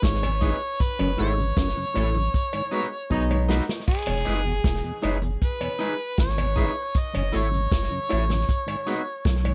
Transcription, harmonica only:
0.04 0.83 C#5 loud
0.82 1.19 B4 loud
1.20 3.46 C#5 loud
3.89 4.99 G#4 loud
5.44 6.16 B4 medium
6.20 7.00 C#5 loud
6.98 7.39 D#5 loud
7.37 9.54 C#5 loud

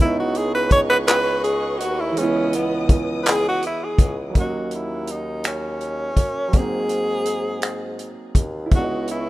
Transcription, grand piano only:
0.00 2.12 G#3 medium
0.00 2.14 B3 medium
0.00 2.10 E4 medium
0.05 2.16 D#4 medium
2.11 4.28 E3 medium
2.11 4.30 G#3 medium
2.19 4.32 B3 medium
2.19 4.34 E4 medium
4.30 6.47 F#3 soft
4.30 6.49 A#3 soft
4.38 6.51 C#4 soft
4.38 6.52 D#5 soft
6.48 8.65 F#3 medium
6.52 8.67 A#3 soft
6.52 8.69 C4 soft
6.60 8.71 D#4 medium
8.66 9.29 G#3 soft
8.66 9.29 E4 medium
8.74 9.29 B3 soft
8.78 8.81 D4 soft
8.84 9.29 D#5 medium

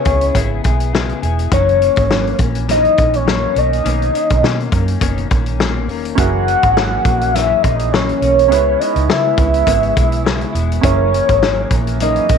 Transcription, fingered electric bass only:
0.05 0.29 C#2 medium
0.35 0.58 G#1 medium
0.65 1.11 B1 medium
1.23 1.46 E1 medium
1.51 1.88 F#1 loud
1.97 2.31 G#1 medium
2.39 2.86 A#1 medium
2.98 3.45 A#1 medium
3.56 3.79 B1 medium
3.85 4.08 B1 loud
4.31 4.41 B1 medium
4.43 4.66 B2 medium
4.72 4.96 F#2 medium
5.01 5.25 F#1 medium
5.31 5.88 A#1 medium
5.88 6.12 E1 medium
6.18 6.54 F#1 medium
6.63 6.97 G#1 medium
7.05 7.52 A#1 medium
7.64 8.11 A#1 medium
8.21 8.51 B1 medium
8.51 8.74 C#2 loud
8.96 9.06 C#2 loud
9.08 9.32 C#3 medium
9.38 9.61 C#2 medium
9.67 9.90 G#1 medium
9.97 10.43 B1 medium
10.54 10.78 E1 medium
10.83 11.20 F#1 loud
11.29 11.63 G#1 medium
11.71 12.17 A#1 medium
12.30 12.38 A#1 medium

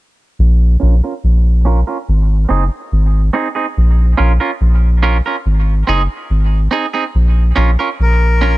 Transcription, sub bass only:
0.39 0.77 A#1 loud
0.82 1.01 A#1 loud
1.24 1.84 A#1 medium
2.09 2.46 G#1 medium
2.50 2.70 F#1 medium
2.92 3.30 G#1 loud
3.78 4.15 A#1 loud
4.19 4.39 A#1 medium
4.61 5.21 A#1 medium
5.46 5.84 G#1 medium
5.89 6.08 F#1 medium
6.30 6.68 G#1 medium
7.15 7.53 A#1 loud
7.57 7.77 A#1 loud
8.00 8.58 A#1 medium

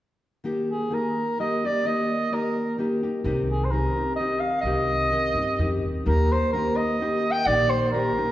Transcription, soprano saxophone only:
0.70 0.95 G#4 medium
0.94 1.39 A#4 medium
1.40 1.67 D#5 medium
1.65 1.88 D5 medium
1.86 2.35 D#5 medium
2.34 2.80 A#4 medium
3.49 3.66 G#4 medium
3.64 3.72 C5 medium
3.71 4.15 A#4 medium
4.16 4.41 D#5 medium
4.40 4.60 F5 medium
4.61 5.78 D#5 medium
6.07 6.34 A#4 medium
6.32 6.52 C5 medium
6.53 6.78 A#4 medium
6.76 7.33 D#5 medium
7.31 7.48 G5 medium
7.46 7.71 D5 loud
7.70 7.91 C5 medium
7.91 8.32 A#4 medium

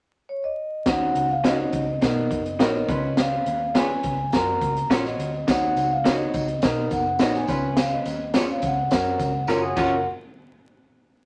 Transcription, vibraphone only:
0.29 0.44 C#5 medium
0.44 0.88 D#5 medium
0.87 1.31 F#5 medium
1.31 1.45 F5 medium
1.46 1.72 D#5 medium
1.75 2.63 D#5 medium
2.62 2.76 C#5 medium
2.75 3.19 D#5 medium
3.18 3.77 F5 medium
3.76 4.35 G#5 loud
4.33 4.92 A#5 loud
4.92 5.04 C#5 medium
5.06 5.50 D#5 medium
5.49 5.93 F#5 medium
5.92 5.98 F5 medium
6.06 6.32 D#5 medium
6.35 6.88 D#5 medium
6.93 7.36 F#5 medium
7.35 7.79 G#5 medium
7.79 7.85 F5 medium
7.92 8.36 D#5 medium
8.36 8.50 C#5 medium
8.51 8.64 F5 medium
8.65 9.74 F#5 medium
9.77 10.04 F#5 medium

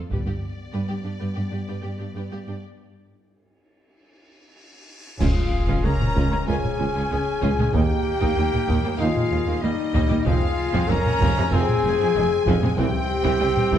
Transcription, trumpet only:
5.20 5.86 G#3 medium
5.85 6.47 C#4 loud
6.48 7.72 C#4 medium
7.75 8.98 A#3 medium
9.00 9.64 G#3 medium
9.62 10.27 G3 medium
10.26 10.91 G#3 loud
10.90 11.54 C#4 loud
11.53 12.50 C4 loud
12.77 13.78 C4 loud

